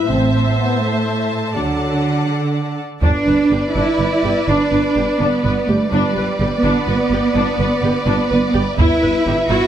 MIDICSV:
0, 0, Header, 1, 8, 480
1, 0, Start_track
1, 0, Tempo, 488202
1, 88, Time_signature, 12, 3, 24, 8
1, 3930, Tempo, 478469
1, 9622, End_track
2, 0, Start_track
2, 0, Title_t, "Violin section"
2, 0, Program_c, 0, 48
2, 0, Note_on_c, 0, 76, 42
2, 87, Note_on_c, 0, 81, 38
2, 1489, Note_off_c, 0, 76, 0
2, 1527, Note_on_c, 0, 78, 32
2, 2739, Note_off_c, 0, 81, 0
2, 2741, Note_off_c, 0, 78, 0
2, 2975, Note_on_c, 0, 71, 35
2, 5816, Note_off_c, 0, 71, 0
2, 5859, Note_on_c, 0, 71, 42
2, 9622, Note_off_c, 0, 71, 0
2, 9622, End_track
3, 0, Start_track
3, 0, Title_t, "Violin section"
3, 0, Program_c, 1, 48
3, 2979, Note_on_c, 1, 74, 33
3, 5818, Note_off_c, 1, 74, 0
3, 5865, Note_on_c, 1, 74, 42
3, 8702, Note_off_c, 1, 74, 0
3, 8740, Note_on_c, 1, 76, 53
3, 9622, Note_off_c, 1, 76, 0
3, 9622, End_track
4, 0, Start_track
4, 0, Title_t, "French horn section"
4, 0, Program_c, 2, 60
4, 95, Note_on_c, 2, 60, 63
4, 558, Note_off_c, 2, 60, 0
4, 568, Note_on_c, 2, 59, 54
4, 788, Note_on_c, 2, 57, 51
4, 805, Note_off_c, 2, 59, 0
4, 1503, Note_off_c, 2, 57, 0
4, 1530, Note_on_c, 2, 54, 46
4, 2255, Note_off_c, 2, 54, 0
4, 2983, Note_on_c, 2, 74, 37
4, 2992, Note_on_c, 2, 71, 41
4, 5820, Note_off_c, 2, 74, 0
4, 5825, Note_off_c, 2, 71, 0
4, 5856, Note_on_c, 2, 71, 45
4, 5863, Note_on_c, 2, 74, 48
4, 8701, Note_off_c, 2, 74, 0
4, 8751, Note_on_c, 2, 76, 56
4, 9622, Note_off_c, 2, 71, 0
4, 9622, Note_off_c, 2, 76, 0
4, 9622, End_track
5, 0, Start_track
5, 0, Title_t, "Viola section"
5, 0, Program_c, 3, 48
5, 0, Note_on_c, 3, 76, 46
5, 93, Note_on_c, 3, 72, 45
5, 1486, Note_off_c, 3, 76, 0
5, 1488, Note_off_c, 3, 72, 0
5, 1529, Note_on_c, 3, 74, 31
5, 1532, Note_on_c, 3, 69, 36
5, 2742, Note_off_c, 3, 74, 0
5, 2744, Note_off_c, 3, 69, 0
5, 2982, Note_on_c, 3, 62, 44
5, 3202, Note_off_c, 3, 62, 0
5, 3221, Note_on_c, 3, 71, 27
5, 3300, Note_off_c, 3, 71, 0
5, 3456, Note_on_c, 3, 67, 26
5, 3535, Note_off_c, 3, 67, 0
5, 3697, Note_on_c, 3, 62, 35
5, 3916, Note_off_c, 3, 62, 0
5, 3940, Note_on_c, 3, 71, 25
5, 4020, Note_off_c, 3, 71, 0
5, 4178, Note_on_c, 3, 67, 29
5, 4258, Note_off_c, 3, 67, 0
5, 4419, Note_on_c, 3, 62, 44
5, 4640, Note_off_c, 3, 62, 0
5, 4663, Note_on_c, 3, 71, 34
5, 4743, Note_off_c, 3, 71, 0
5, 4903, Note_on_c, 3, 67, 30
5, 4984, Note_off_c, 3, 67, 0
5, 5145, Note_on_c, 3, 62, 38
5, 5365, Note_off_c, 3, 62, 0
5, 5380, Note_on_c, 3, 71, 44
5, 5460, Note_off_c, 3, 71, 0
5, 5620, Note_on_c, 3, 67, 32
5, 5701, Note_off_c, 3, 67, 0
5, 5858, Note_on_c, 3, 62, 49
5, 6082, Note_off_c, 3, 62, 0
5, 6108, Note_on_c, 3, 71, 34
5, 6188, Note_off_c, 3, 71, 0
5, 6345, Note_on_c, 3, 67, 39
5, 6425, Note_off_c, 3, 67, 0
5, 6577, Note_on_c, 3, 62, 53
5, 6802, Note_off_c, 3, 62, 0
5, 6823, Note_on_c, 3, 71, 38
5, 6903, Note_off_c, 3, 71, 0
5, 7066, Note_on_c, 3, 67, 38
5, 7147, Note_off_c, 3, 67, 0
5, 7304, Note_on_c, 3, 62, 49
5, 7525, Note_off_c, 3, 62, 0
5, 7540, Note_on_c, 3, 71, 44
5, 7620, Note_off_c, 3, 71, 0
5, 7781, Note_on_c, 3, 67, 43
5, 7861, Note_off_c, 3, 67, 0
5, 8017, Note_on_c, 3, 62, 51
5, 8242, Note_off_c, 3, 62, 0
5, 8258, Note_on_c, 3, 71, 50
5, 8338, Note_off_c, 3, 71, 0
5, 8491, Note_on_c, 3, 67, 51
5, 8571, Note_off_c, 3, 67, 0
5, 8737, Note_on_c, 3, 64, 62
5, 8960, Note_off_c, 3, 64, 0
5, 8972, Note_on_c, 3, 71, 43
5, 9052, Note_off_c, 3, 71, 0
5, 9210, Note_on_c, 3, 67, 34
5, 9290, Note_off_c, 3, 67, 0
5, 9448, Note_on_c, 3, 64, 54
5, 9622, Note_off_c, 3, 64, 0
5, 9622, End_track
6, 0, Start_track
6, 0, Title_t, "Cello section"
6, 0, Program_c, 4, 48
6, 91, Note_on_c, 4, 45, 36
6, 1498, Note_off_c, 4, 45, 0
6, 1531, Note_on_c, 4, 50, 34
6, 2782, Note_off_c, 4, 50, 0
6, 2976, Note_on_c, 4, 62, 50
6, 3653, Note_off_c, 4, 62, 0
6, 3691, Note_on_c, 4, 64, 47
6, 4411, Note_off_c, 4, 64, 0
6, 4415, Note_on_c, 4, 62, 47
6, 5136, Note_on_c, 4, 59, 46
6, 5137, Note_off_c, 4, 62, 0
6, 5617, Note_off_c, 4, 59, 0
6, 5621, Note_on_c, 4, 57, 51
6, 5860, Note_off_c, 4, 57, 0
6, 5864, Note_on_c, 4, 55, 52
6, 6568, Note_off_c, 4, 55, 0
6, 6579, Note_on_c, 4, 59, 59
6, 8461, Note_off_c, 4, 59, 0
6, 8737, Note_on_c, 4, 64, 64
6, 9413, Note_off_c, 4, 64, 0
6, 9457, Note_on_c, 4, 66, 67
6, 9622, Note_off_c, 4, 66, 0
6, 9622, End_track
7, 0, Start_track
7, 0, Title_t, "Double bass section"
7, 0, Program_c, 5, 48
7, 95, Note_on_c, 5, 33, 44
7, 535, Note_off_c, 5, 33, 0
7, 1534, Note_on_c, 5, 38, 32
7, 1981, Note_off_c, 5, 38, 0
7, 2979, Note_on_c, 5, 31, 44
7, 3058, Note_off_c, 5, 31, 0
7, 3217, Note_on_c, 5, 31, 28
7, 3295, Note_off_c, 5, 31, 0
7, 3456, Note_on_c, 5, 31, 34
7, 3535, Note_off_c, 5, 31, 0
7, 3693, Note_on_c, 5, 31, 45
7, 3772, Note_off_c, 5, 31, 0
7, 3929, Note_on_c, 5, 31, 35
7, 4009, Note_off_c, 5, 31, 0
7, 4172, Note_on_c, 5, 31, 28
7, 4252, Note_off_c, 5, 31, 0
7, 4418, Note_on_c, 5, 31, 47
7, 4498, Note_off_c, 5, 31, 0
7, 4654, Note_on_c, 5, 31, 37
7, 4734, Note_off_c, 5, 31, 0
7, 4897, Note_on_c, 5, 31, 33
7, 4978, Note_off_c, 5, 31, 0
7, 5142, Note_on_c, 5, 31, 47
7, 5222, Note_off_c, 5, 31, 0
7, 5385, Note_on_c, 5, 31, 39
7, 5466, Note_off_c, 5, 31, 0
7, 5630, Note_on_c, 5, 31, 35
7, 5711, Note_off_c, 5, 31, 0
7, 5871, Note_on_c, 5, 31, 54
7, 5951, Note_off_c, 5, 31, 0
7, 6108, Note_on_c, 5, 31, 38
7, 6189, Note_off_c, 5, 31, 0
7, 6346, Note_on_c, 5, 31, 41
7, 6426, Note_off_c, 5, 31, 0
7, 6579, Note_on_c, 5, 31, 51
7, 6660, Note_off_c, 5, 31, 0
7, 6816, Note_on_c, 5, 31, 40
7, 6896, Note_off_c, 5, 31, 0
7, 7050, Note_on_c, 5, 31, 37
7, 7131, Note_off_c, 5, 31, 0
7, 7292, Note_on_c, 5, 31, 53
7, 7373, Note_off_c, 5, 31, 0
7, 7534, Note_on_c, 5, 31, 43
7, 7614, Note_off_c, 5, 31, 0
7, 7777, Note_on_c, 5, 31, 43
7, 7857, Note_off_c, 5, 31, 0
7, 8014, Note_on_c, 5, 31, 61
7, 8094, Note_off_c, 5, 31, 0
7, 8258, Note_on_c, 5, 31, 44
7, 8338, Note_off_c, 5, 31, 0
7, 8494, Note_on_c, 5, 31, 47
7, 8574, Note_off_c, 5, 31, 0
7, 8734, Note_on_c, 5, 31, 64
7, 8815, Note_off_c, 5, 31, 0
7, 8971, Note_on_c, 5, 31, 42
7, 9051, Note_off_c, 5, 31, 0
7, 9213, Note_on_c, 5, 31, 48
7, 9293, Note_off_c, 5, 31, 0
7, 9447, Note_on_c, 5, 31, 55
7, 9527, Note_off_c, 5, 31, 0
7, 9622, End_track
8, 0, Start_track
8, 0, Title_t, "Taiko and cinematic ensemble drums"
8, 2973, Note_on_c, 9, 41, 44
8, 3071, Note_off_c, 9, 41, 0
8, 8736, Note_on_c, 9, 41, 51
8, 8836, Note_off_c, 9, 41, 0
8, 9622, End_track
0, 0, End_of_file